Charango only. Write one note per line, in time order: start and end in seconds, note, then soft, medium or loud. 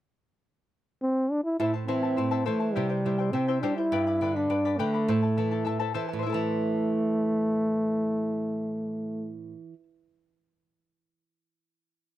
1.60 1.74 E4 medium
1.60 1.74 A4 medium
1.60 1.73 C5 medium
1.60 1.74 E5 medium
1.60 1.72 A5 medium
1.74 1.87 E4 soft
1.74 1.87 C5 soft
1.74 1.88 A5 soft
1.88 2.03 E4 medium
1.88 2.02 C5 medium
1.88 2.03 E5 soft
1.88 2.02 A5 medium
2.03 2.16 E4 soft
2.03 2.16 C5 soft
2.03 2.17 A5 soft
2.16 2.30 E4 medium
2.16 2.30 C5 medium
2.16 2.31 E5 soft
2.16 2.30 A5 medium
2.31 2.45 E4 medium
2.31 2.44 A4 soft
2.31 2.45 C5 medium
2.31 2.44 E5 medium
2.31 2.45 A5 medium
2.46 2.60 E4 medium
2.46 2.61 A4 medium
2.46 2.59 C5 medium
2.46 2.60 E5 medium
2.46 2.59 A5 medium
2.60 2.74 E4 soft
2.60 2.75 C5 soft
2.60 2.75 A5 soft
2.75 2.90 E4 medium
2.75 2.90 G4 medium
2.75 2.89 C5 medium
2.75 2.90 E5 medium
2.75 2.88 G5 medium
2.90 3.05 E4 soft
2.90 3.05 C5 soft
2.90 3.04 G5 soft
3.05 3.19 E4 medium
3.05 3.18 C5 medium
3.05 3.19 E5 medium
3.05 3.17 G5 medium
3.18 3.33 E4 soft
3.18 3.33 C5 soft
3.18 3.33 G5 soft
3.33 3.48 E4 medium
3.33 3.47 C5 medium
3.33 3.48 E5 medium
3.33 3.47 G5 medium
3.48 3.62 E4 medium
3.48 3.61 G4 soft
3.48 3.63 C5 medium
3.48 3.62 E5 medium
3.48 3.62 G5 medium
3.63 3.77 E4 medium
3.63 3.77 G4 medium
3.63 3.77 C5 medium
3.63 3.77 E5 medium
3.63 3.76 G5 medium
3.78 3.92 E4 soft
3.78 3.92 C5 soft
3.78 3.91 G5 medium
3.92 4.07 G4 medium
3.92 4.07 B4 medium
3.92 4.07 D5 medium
3.92 4.07 G5 medium
3.92 4.06 B5 medium
4.07 4.21 B4 soft
4.07 4.21 D5 soft
4.07 4.21 B5 soft
4.22 4.36 B4 medium
4.22 4.35 D5 medium
4.22 4.36 G5 medium
4.22 4.35 B5 medium
4.36 4.49 B4 soft
4.36 4.49 D5 soft
4.36 4.50 B5 soft
4.50 4.64 B4 medium
4.50 4.64 D5 medium
4.50 4.65 G5 medium
4.50 4.64 B5 medium
4.65 4.78 G4 soft
4.65 4.78 B4 medium
4.65 4.79 D5 medium
4.65 4.78 G5 soft
4.65 4.79 B5 medium
4.79 4.94 G4 medium
4.79 4.94 B4 medium
4.79 4.93 D5 medium
4.79 4.94 G5 medium
4.79 4.93 B5 medium
4.94 5.09 B4 soft
4.94 5.09 D5 soft
4.94 5.08 B5 soft
5.09 5.23 E4 medium
5.09 5.22 A4 medium
5.09 5.23 C5 medium
5.09 5.23 E5 medium
5.09 5.21 A5 medium
5.22 5.37 E4 soft
5.22 5.37 A4 soft
5.22 5.37 A5 soft
5.37 5.52 E4 soft
5.37 5.51 A4 medium
5.37 5.52 E5 medium
5.37 5.50 A5 medium
5.51 5.64 E4 soft
5.51 5.64 A4 soft
5.51 5.65 A5 soft
5.65 5.79 E4 medium
5.65 5.79 A4 medium
5.65 5.80 E5 medium
5.65 5.78 A5 medium
5.80 5.93 E4 medium
5.80 5.93 A4 medium
5.80 5.93 C5 soft
5.80 5.93 E5 medium
5.80 5.94 A5 medium
5.94 6.08 E4 medium
5.94 6.07 A4 medium
5.94 6.10 C5 medium
5.94 6.10 E5 medium
5.94 6.07 A5 medium
6.08 6.25 E4 soft
6.08 6.24 A4 soft
6.08 6.22 A5 soft
6.19 9.69 C5 medium
6.19 9.73 E5 medium
6.26 9.76 E4 medium
6.26 9.80 A4 medium
6.33 9.83 A5 medium